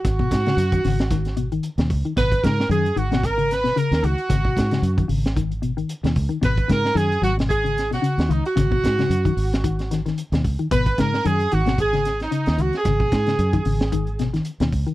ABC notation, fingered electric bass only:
X:1
M:4/4
L:1/16
Q:"Swing 16ths" 1/4=112
K:G#m
V:1 name="Fingered electric bass" clef=bass
G,,,2 G,,2 F,,2 G,,,6- G,,, D,, C,, z | G,,,2 G,,2 F,,2 G,,,6- G,,, D,, C,, z | G,,,2 G,,2 F,,2 G,,,6- G,,, D,, C,, z | G,,,2 G,,2 F,,2 G,,,6- G,,, D,, C,, z |
G,,,2 G,,2 F,,2 G,,,6- G,,, D,, C,, z | G,,,2 G,,2 F,,2 G,,,6- G,,, D,, C,, z | G,,,2 G,,2 F,,2 G,,,6- G,,, D,, C,, z |]